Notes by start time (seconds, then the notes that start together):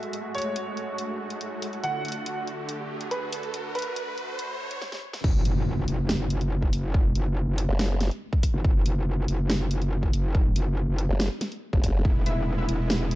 Already playing: G#3 A3 F#4 E5, riser
0.03 closed hi-hat
0.13 closed hi-hat
0.35 C#5, closed hi-hat
0.38 closed hi-hat
0.42 closed hi-hat
0.56 closed hi-hat
0.77 closed hi-hat
0.98 closed hi-hat
1.30 closed hi-hat
1.41 closed hi-hat
1.62 open hi-hat
1.73 closed hi-hat
1.84 D3 F#5, closed hi-hat
2.05 closed hi-hat
2.08 closed hi-hat
2.12 closed hi-hat
2.26 closed hi-hat
2.47 closed hi-hat
2.69 closed hi-hat
3.01 closed hi-hat
3.11 B4, closed hi-hat
3.33 open hi-hat
3.43 closed hi-hat
3.54 closed hi-hat
3.75 B4, closed hi-hat
3.79 closed hi-hat
3.82 closed hi-hat
3.96 closed hi-hat
4.18 closed hi-hat
4.39 closed hi-hat
4.71 closed hi-hat
4.82 snare
4.92 snare
5.13 snare
5.24 F#1, kick, crash, impact
5.45 F#1, closed hi-hat
5.88 F#1, closed hi-hat
6.09 snare
6.30 closed hi-hat
6.41 closed hi-hat
6.62 kick
6.73 F#1, open hi-hat
6.94 kick
7.15 F#1, closed hi-hat
7.47 F#1
7.58 closed hi-hat
7.69 F#1
7.79 snare
8.01 snare, closed hi-hat
8.11 closed hi-hat
8.33 kick
8.43 kick, open hi-hat
8.54 F#1
8.65 F#1, kick
8.86 F#1, closed hi-hat
9.28 F#1, closed hi-hat
9.50 snare
9.71 closed hi-hat
9.82 closed hi-hat
10.03 kick
10.13 F#1, open hi-hat
10.35 kick
10.56 F#1, closed hi-hat
10.88 F#1
10.99 closed hi-hat
11.09 F#1
11.20 snare
11.41 snare, closed hi-hat
11.52 closed hi-hat
11.73 F#1, kick
11.84 kick, open hi-hat
12.05 E1 G#3 B3 E4, kick
12.26 E1 E4 B4 E5, closed hi-hat
12.58 E4 B4 E5
12.69 E1, closed hi-hat
12.90 snare
13.11 closed hi-hat